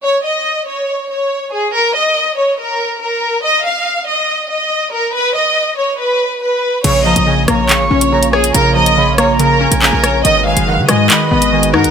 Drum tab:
CC |----------------|----------------|----------------|----------------|
HH |----------------|----------------|----------------|----------------|
CP |----------------|----------------|----------------|----------------|
SD |----------------|----------------|----------------|----------------|

CC |x---------------|----------------|----------------|
HH |x--x--x-x--x-x-x|x--x--x-x--x--x-|x--x--x-x--x-x-x|
CP |--------x-------|------------x---|--------x-------|
SD |------r-------r-|------r-------r-|------r-------r-|